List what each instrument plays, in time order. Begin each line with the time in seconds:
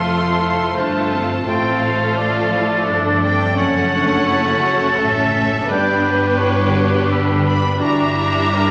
Already playing: double bass section F1, cello section F2, harp F3 A3 F4 A4, viola section A3 F4, violin section A4 C5 C6, flute F6
0.07 clarinet F4, cor anglais A4, harp C5
0.30 harp A3
0.39 clarinet E4
0.54 harp C5
0.75 double bass section G1, cello section G2, viola section A3 F4, clarinet D4, harp F4, violin section A4 C5, cor anglais C5, flute F6
0.79 violin section A5
1.02 harp A3
1.13 clarinet C4
1.25 harp F4
1.46 double bass section A1, cello section A2, harp A2, french horn section A3 F4, viola section A3 F4, clarinet C4, violin section A4 C5 G5, cor anglais C5, flute A6
1.71 harp C5
1.82 violin section F5
1.94 harp A3
2.18 harp F4, clarinet F4, cor anglais D5, flute A6
2.43 harp F3
2.54 clarinet E4
2.89 double bass section G1, cello section G2, harp A3, clarinet D4, viola section D4
3.12 harp F3
3.24 clarinet C4, violin section G5
3.34 harp A3
3.57 double bass section F#1, harp F#2, cello section F#2, viola section A3 C#4, french horn section A3 C#4, clarinet C#4, violin section A4 C#5 F#5, cor anglais C#5, flute A6
3.80 harp C#5
3.92 clarinet D4
4.04 harp A3
4.27 clarinet E4, harp A4
4.31 flute A6
4.53 harp C#3
4.63 clarinet F#4
4.75 harp A4
4.96 double bass section A1, cello section A2, harp A3, clarinet C#4, cor anglais A4
5.01 violin section E5
5.23 harp C#3
5.46 harp A3
5.68 double bass section G1, harp G2, cello section G2, french horn section G3 D4, viola section B3 D4, clarinet D4, violin section G4 B4 D5, cor anglais B4, flute G6
6.07 violin section B4
6.15 harp B3
6.38 clarinet E4, harp G4, cor anglais C#5, flute F#6
6.62 harp D3
6.74 clarinet F#4
6.86 harp G4
7.09 harp B3, clarinet G4, cor anglais B4, flute E6
7.33 harp D3
7.45 clarinet G4, violin section B5
7.57 harp B3
7.79 double bass section G1, cello section G2, harp G2, french horn section E3 D4, viola section G3 D4, violin section E4 E5 A#5, clarinet F#4, cor anglais D5
7.84 flute D6
8.04 harp E5
8.16 clarinet E4
8.30 harp D4
8.54 clarinet D4, harp E4, cor anglais A#4